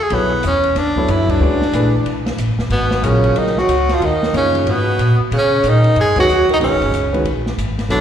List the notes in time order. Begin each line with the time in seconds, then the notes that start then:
0.03 G#4
0.10 B1 F#3 B3 E4 A4 C#5, ride
0.14 B3
0.43 E2, hi-hat pedal, ride
0.47 C#4
0.64 ride
0.75 D2 D4, snare, ride
0.96 F#3 B3 E4 A4 C#5, kick
1.08 F#2 E4, hi-hat pedal, ride
1.29 D4, muted upright bass stroke, kick, crash
1.40 D2 G#3 C#4 F#4 B4 D5
1.61 muted upright bass stroke, snare
1.72 A#1 E3 A3 D4 G#4 B4, hi-hat pedal, ride
2.04 B1, ride
2.26 snare, ride
2.37 A1, hi-hat pedal, ride
2.47 F#1
2.58 D1, snare
2.70 G#1 B2 B3, ride
2.91 snare
3.02 A#1 C#3 F#3 B3 C#4 F4 A#4, hi-hat pedal, ride
3.24 ride
3.36 B1 D#3 D#4, ride
3.47 snare
3.58 F#3 F#4, snare
3.67 C#2, hi-hat pedal, ride
3.89 F3, snare, ride
3.94 F4
4.00 D#2 D#3, ride
4.05 D#4
4.23 snare
4.33 F#2 C#3 F3 A#3 D#4 G#4 C#5, hi-hat pedal, ride
4.37 C#4
4.55 ride
4.66 G#2 B2, ride
4.71 B3
4.98 A#2, hi-hat pedal, ride
5.19 muted upright bass stroke
5.31 B2 C#3, ride
5.37 C#4
5.63 A#2 D#3, hi-hat pedal, ride
5.69 D#4
5.84 ride
5.96 F#2 G#3, ride
6.01 G#4
6.16 D#3 F#3 G#3 C#4 F#4 B4, muted upright bass stroke, kick, crash
6.20 F#4
6.29 D#2, hi-hat pedal
6.49 D#3, kick, ride
6.53 D#4
6.60 B1 C#3 D#3 G#3 C#4 F#4 B4, ride
6.72 G#1
6.81 F#1, ride
6.92 C#2, hi-hat pedal, ride
7.13 D#3 G#3 C#4 F#4 B4, ride
7.24 A#1, ride
7.46 snare
7.58 G#1, hi-hat pedal, ride
7.79 snare, ride
7.89 B1 D3 F#3 B3 D4 E4 A4 C#5, ride